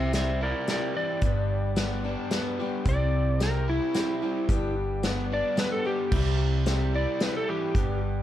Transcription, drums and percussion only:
0.13 snare medium
0.13 closed hi-hat medium
0.68 snare medium
0.68 closed hi-hat medium
1.22 kick loud
1.22 closed hi-hat medium
1.76 snare medium
1.76 closed hi-hat medium
2.31 snare medium
2.31 closed hi-hat medium
2.85 kick loud
2.85 closed hi-hat medium
3.40 snare medium
3.40 closed hi-hat medium
3.95 snare medium
3.95 closed hi-hat medium
4.49 kick loud
4.49 closed hi-hat medium
5.03 snare medium
5.03 closed hi-hat medium
5.57 snare medium
5.57 closed hi-hat medium
6.12 kick loud
6.12 crash medium
6.66 snare medium
6.66 closed hi-hat medium
7.20 snare medium
7.20 closed hi-hat medium
7.75 kick loud
7.75 closed hi-hat medium

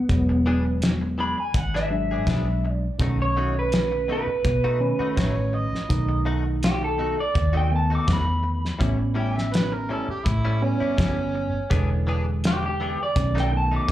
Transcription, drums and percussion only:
0.09 kick medium
0.09 closed hi-hat medium
0.82 snare loud
0.82 closed hi-hat medium
1.54 kick loud
1.54 closed hi-hat medium
1.75 snare soft
2.27 kick medium
2.27 snare loud
2.27 closed hi-hat medium
3.00 kick loud
3.00 closed hi-hat medium
3.72 snare loud
3.72 closed hi-hat medium
4.45 kick loud
4.45 closed hi-hat medium
5.17 kick medium
5.17 snare loud
5.17 closed hi-hat medium
5.75 snare soft
5.90 kick loud
5.90 closed hi-hat medium
6.63 snare loud
6.63 closed hi-hat medium
7.35 kick loud
7.35 closed hi-hat medium
8.08 kick loud
8.08 snare loud
8.08 closed hi-hat medium
8.65 snare soft
8.81 kick loud
8.81 closed hi-hat medium
9.38 snare soft
9.54 snare loud
9.54 closed hi-hat medium
10.26 kick loud
10.26 closed hi-hat medium
10.98 kick medium
10.98 snare loud
10.98 closed hi-hat medium
11.71 kick loud
11.71 closed hi-hat medium
12.44 snare loud
12.44 closed hi-hat medium
13.16 kick loud
13.16 closed hi-hat medium
13.37 snare soft
13.88 kick medium

